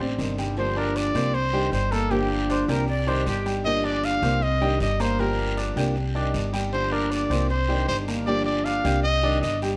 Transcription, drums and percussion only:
0, 0, Header, 1, 2, 480
1, 0, Start_track
1, 0, Key_signature, -2, "minor"
1, 0, Tempo, 384862
1, 718, Time_signature, 4, 2, 24, 8
1, 12180, End_track
2, 0, Start_track
2, 0, Title_t, "Drums"
2, 242, Note_on_c, 9, 73, 68
2, 366, Note_off_c, 9, 73, 0
2, 477, Note_on_c, 9, 73, 68
2, 602, Note_off_c, 9, 73, 0
2, 721, Note_on_c, 9, 74, 63
2, 845, Note_off_c, 9, 74, 0
2, 1196, Note_on_c, 9, 73, 79
2, 1321, Note_off_c, 9, 73, 0
2, 1436, Note_on_c, 9, 73, 76
2, 1561, Note_off_c, 9, 73, 0
2, 1682, Note_on_c, 9, 74, 64
2, 1807, Note_off_c, 9, 74, 0
2, 2158, Note_on_c, 9, 73, 69
2, 2283, Note_off_c, 9, 73, 0
2, 2395, Note_on_c, 9, 73, 71
2, 2520, Note_off_c, 9, 73, 0
2, 2634, Note_on_c, 9, 74, 71
2, 2758, Note_off_c, 9, 74, 0
2, 3115, Note_on_c, 9, 73, 69
2, 3239, Note_off_c, 9, 73, 0
2, 3358, Note_on_c, 9, 73, 76
2, 3483, Note_off_c, 9, 73, 0
2, 3590, Note_on_c, 9, 74, 65
2, 3715, Note_off_c, 9, 74, 0
2, 4073, Note_on_c, 9, 73, 68
2, 4198, Note_off_c, 9, 73, 0
2, 4316, Note_on_c, 9, 73, 68
2, 4441, Note_off_c, 9, 73, 0
2, 4552, Note_on_c, 9, 74, 73
2, 4677, Note_off_c, 9, 74, 0
2, 5034, Note_on_c, 9, 73, 74
2, 5158, Note_off_c, 9, 73, 0
2, 5273, Note_on_c, 9, 73, 70
2, 5398, Note_off_c, 9, 73, 0
2, 5514, Note_on_c, 9, 74, 62
2, 5639, Note_off_c, 9, 74, 0
2, 5992, Note_on_c, 9, 73, 64
2, 6117, Note_off_c, 9, 73, 0
2, 6234, Note_on_c, 9, 73, 74
2, 6358, Note_off_c, 9, 73, 0
2, 6472, Note_on_c, 9, 74, 71
2, 6597, Note_off_c, 9, 74, 0
2, 6953, Note_on_c, 9, 73, 77
2, 7077, Note_off_c, 9, 73, 0
2, 7197, Note_on_c, 9, 73, 74
2, 7322, Note_off_c, 9, 73, 0
2, 7430, Note_on_c, 9, 74, 64
2, 7554, Note_off_c, 9, 74, 0
2, 7908, Note_on_c, 9, 73, 71
2, 8033, Note_off_c, 9, 73, 0
2, 8153, Note_on_c, 9, 73, 76
2, 8277, Note_off_c, 9, 73, 0
2, 8391, Note_on_c, 9, 74, 74
2, 8515, Note_off_c, 9, 74, 0
2, 8874, Note_on_c, 9, 73, 81
2, 8999, Note_off_c, 9, 73, 0
2, 9119, Note_on_c, 9, 73, 77
2, 9243, Note_off_c, 9, 73, 0
2, 9357, Note_on_c, 9, 74, 65
2, 9482, Note_off_c, 9, 74, 0
2, 9839, Note_on_c, 9, 73, 79
2, 9964, Note_off_c, 9, 73, 0
2, 10078, Note_on_c, 9, 73, 80
2, 10203, Note_off_c, 9, 73, 0
2, 10319, Note_on_c, 9, 74, 69
2, 10443, Note_off_c, 9, 74, 0
2, 10796, Note_on_c, 9, 73, 72
2, 10921, Note_off_c, 9, 73, 0
2, 11037, Note_on_c, 9, 73, 76
2, 11162, Note_off_c, 9, 73, 0
2, 11278, Note_on_c, 9, 74, 65
2, 11402, Note_off_c, 9, 74, 0
2, 11761, Note_on_c, 9, 73, 72
2, 11885, Note_off_c, 9, 73, 0
2, 12001, Note_on_c, 9, 73, 75
2, 12126, Note_off_c, 9, 73, 0
2, 12180, End_track
0, 0, End_of_file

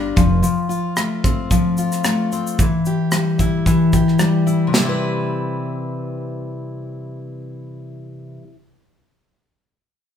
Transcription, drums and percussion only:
0, 0, Header, 1, 2, 480
1, 0, Start_track
1, 0, Key_signature, 0, "major"
1, 0, Tempo, 538117
1, 390, Time_signature, 4, 2, 24, 8
1, 9067, End_track
2, 0, Start_track
2, 0, Title_t, "Drums"
2, 151, Note_on_c, 9, 36, 87
2, 155, Note_on_c, 9, 82, 38
2, 240, Note_off_c, 9, 36, 0
2, 244, Note_off_c, 9, 82, 0
2, 387, Note_on_c, 9, 82, 62
2, 477, Note_off_c, 9, 82, 0
2, 628, Note_on_c, 9, 82, 42
2, 717, Note_off_c, 9, 82, 0
2, 861, Note_on_c, 9, 82, 52
2, 863, Note_on_c, 9, 37, 74
2, 950, Note_off_c, 9, 82, 0
2, 953, Note_off_c, 9, 37, 0
2, 1108, Note_on_c, 9, 36, 75
2, 1115, Note_on_c, 9, 82, 44
2, 1197, Note_off_c, 9, 36, 0
2, 1204, Note_off_c, 9, 82, 0
2, 1345, Note_on_c, 9, 36, 73
2, 1348, Note_on_c, 9, 82, 58
2, 1435, Note_off_c, 9, 36, 0
2, 1437, Note_off_c, 9, 82, 0
2, 1583, Note_on_c, 9, 82, 44
2, 1672, Note_off_c, 9, 82, 0
2, 1713, Note_on_c, 9, 82, 43
2, 1717, Note_on_c, 9, 37, 27
2, 1802, Note_off_c, 9, 82, 0
2, 1806, Note_off_c, 9, 37, 0
2, 1820, Note_on_c, 9, 82, 57
2, 1824, Note_on_c, 9, 37, 81
2, 1909, Note_off_c, 9, 82, 0
2, 1914, Note_off_c, 9, 37, 0
2, 2071, Note_on_c, 9, 82, 39
2, 2160, Note_off_c, 9, 82, 0
2, 2203, Note_on_c, 9, 82, 48
2, 2292, Note_off_c, 9, 82, 0
2, 2310, Note_on_c, 9, 36, 86
2, 2311, Note_on_c, 9, 82, 64
2, 2399, Note_off_c, 9, 36, 0
2, 2400, Note_off_c, 9, 82, 0
2, 2546, Note_on_c, 9, 82, 43
2, 2636, Note_off_c, 9, 82, 0
2, 2779, Note_on_c, 9, 82, 51
2, 2782, Note_on_c, 9, 37, 80
2, 2868, Note_off_c, 9, 82, 0
2, 2871, Note_off_c, 9, 37, 0
2, 3027, Note_on_c, 9, 36, 65
2, 3028, Note_on_c, 9, 82, 42
2, 3116, Note_off_c, 9, 36, 0
2, 3117, Note_off_c, 9, 82, 0
2, 3266, Note_on_c, 9, 36, 67
2, 3271, Note_on_c, 9, 82, 56
2, 3355, Note_off_c, 9, 36, 0
2, 3361, Note_off_c, 9, 82, 0
2, 3506, Note_on_c, 9, 82, 46
2, 3508, Note_on_c, 9, 36, 68
2, 3595, Note_off_c, 9, 82, 0
2, 3597, Note_off_c, 9, 36, 0
2, 3641, Note_on_c, 9, 37, 27
2, 3731, Note_off_c, 9, 37, 0
2, 3737, Note_on_c, 9, 82, 50
2, 3741, Note_on_c, 9, 37, 71
2, 3826, Note_off_c, 9, 82, 0
2, 3831, Note_off_c, 9, 37, 0
2, 3989, Note_on_c, 9, 82, 37
2, 4078, Note_off_c, 9, 82, 0
2, 4227, Note_on_c, 9, 38, 77
2, 4227, Note_on_c, 9, 55, 64
2, 4316, Note_off_c, 9, 38, 0
2, 4316, Note_off_c, 9, 55, 0
2, 9067, End_track
0, 0, End_of_file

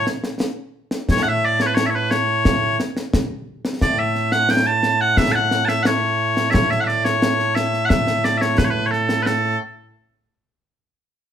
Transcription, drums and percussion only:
0, 0, Header, 1, 2, 480
1, 0, Start_track
1, 0, Key_signature, 3, "major"
1, 0, Tempo, 681818
1, 765, Time_signature, 2, 2, 24, 8
1, 7974, End_track
2, 0, Start_track
2, 0, Title_t, "Drums"
2, 47, Note_on_c, 9, 38, 75
2, 118, Note_off_c, 9, 38, 0
2, 166, Note_on_c, 9, 38, 70
2, 237, Note_off_c, 9, 38, 0
2, 283, Note_on_c, 9, 38, 101
2, 353, Note_off_c, 9, 38, 0
2, 641, Note_on_c, 9, 38, 75
2, 711, Note_off_c, 9, 38, 0
2, 765, Note_on_c, 9, 35, 63
2, 765, Note_on_c, 9, 38, 98
2, 835, Note_off_c, 9, 35, 0
2, 835, Note_off_c, 9, 38, 0
2, 1125, Note_on_c, 9, 38, 78
2, 1195, Note_off_c, 9, 38, 0
2, 1246, Note_on_c, 9, 38, 100
2, 1316, Note_off_c, 9, 38, 0
2, 1487, Note_on_c, 9, 38, 87
2, 1558, Note_off_c, 9, 38, 0
2, 1727, Note_on_c, 9, 35, 68
2, 1727, Note_on_c, 9, 38, 106
2, 1797, Note_off_c, 9, 35, 0
2, 1797, Note_off_c, 9, 38, 0
2, 1969, Note_on_c, 9, 38, 78
2, 2039, Note_off_c, 9, 38, 0
2, 2088, Note_on_c, 9, 38, 69
2, 2158, Note_off_c, 9, 38, 0
2, 2207, Note_on_c, 9, 35, 58
2, 2207, Note_on_c, 9, 38, 99
2, 2277, Note_off_c, 9, 35, 0
2, 2277, Note_off_c, 9, 38, 0
2, 2567, Note_on_c, 9, 38, 74
2, 2638, Note_off_c, 9, 38, 0
2, 2685, Note_on_c, 9, 35, 60
2, 2685, Note_on_c, 9, 38, 93
2, 2756, Note_off_c, 9, 35, 0
2, 2756, Note_off_c, 9, 38, 0
2, 2924, Note_on_c, 9, 38, 25
2, 2994, Note_off_c, 9, 38, 0
2, 3041, Note_on_c, 9, 38, 71
2, 3111, Note_off_c, 9, 38, 0
2, 3159, Note_on_c, 9, 38, 91
2, 3230, Note_off_c, 9, 38, 0
2, 3283, Note_on_c, 9, 38, 27
2, 3353, Note_off_c, 9, 38, 0
2, 3401, Note_on_c, 9, 38, 76
2, 3471, Note_off_c, 9, 38, 0
2, 3641, Note_on_c, 9, 35, 62
2, 3641, Note_on_c, 9, 38, 99
2, 3711, Note_off_c, 9, 35, 0
2, 3711, Note_off_c, 9, 38, 0
2, 3881, Note_on_c, 9, 38, 79
2, 3952, Note_off_c, 9, 38, 0
2, 4002, Note_on_c, 9, 38, 69
2, 4073, Note_off_c, 9, 38, 0
2, 4121, Note_on_c, 9, 38, 106
2, 4191, Note_off_c, 9, 38, 0
2, 4484, Note_on_c, 9, 38, 81
2, 4554, Note_off_c, 9, 38, 0
2, 4606, Note_on_c, 9, 35, 65
2, 4606, Note_on_c, 9, 38, 100
2, 4676, Note_off_c, 9, 35, 0
2, 4676, Note_off_c, 9, 38, 0
2, 4729, Note_on_c, 9, 38, 33
2, 4800, Note_off_c, 9, 38, 0
2, 4848, Note_on_c, 9, 38, 30
2, 4918, Note_off_c, 9, 38, 0
2, 4966, Note_on_c, 9, 38, 79
2, 5036, Note_off_c, 9, 38, 0
2, 5086, Note_on_c, 9, 38, 104
2, 5156, Note_off_c, 9, 38, 0
2, 5205, Note_on_c, 9, 38, 30
2, 5276, Note_off_c, 9, 38, 0
2, 5325, Note_on_c, 9, 38, 81
2, 5396, Note_off_c, 9, 38, 0
2, 5447, Note_on_c, 9, 38, 30
2, 5518, Note_off_c, 9, 38, 0
2, 5563, Note_on_c, 9, 35, 65
2, 5563, Note_on_c, 9, 38, 93
2, 5633, Note_off_c, 9, 35, 0
2, 5633, Note_off_c, 9, 38, 0
2, 5684, Note_on_c, 9, 38, 70
2, 5754, Note_off_c, 9, 38, 0
2, 5805, Note_on_c, 9, 38, 78
2, 5875, Note_off_c, 9, 38, 0
2, 5925, Note_on_c, 9, 38, 74
2, 5996, Note_off_c, 9, 38, 0
2, 6043, Note_on_c, 9, 35, 60
2, 6043, Note_on_c, 9, 38, 107
2, 6113, Note_off_c, 9, 35, 0
2, 6113, Note_off_c, 9, 38, 0
2, 6287, Note_on_c, 9, 38, 33
2, 6357, Note_off_c, 9, 38, 0
2, 6400, Note_on_c, 9, 38, 85
2, 6470, Note_off_c, 9, 38, 0
2, 6522, Note_on_c, 9, 38, 85
2, 6592, Note_off_c, 9, 38, 0
2, 7974, End_track
0, 0, End_of_file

